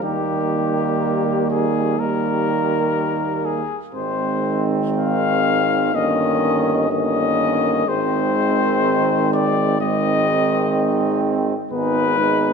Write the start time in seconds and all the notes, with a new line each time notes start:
0.01 D#2 D#3 G3 A#3 G4
1.50 G#4
1.98 D#3 G3 A#3 A#4
3.46 G#4
3.94 G#1 D#3 G#3 C4 C5
4.97 F5
5.93 G1 D#3 A#3 C#4 D#5
6.90 D#3 A#3 C#4 D#5
7.86 G#1 D#3 G#3 C4 C5
9.33 D5
9.80 D#3 G#3 C4 D#5
11.72 G#1 G#3 B3 D#4 B4
12.19 G#3 B3 D#4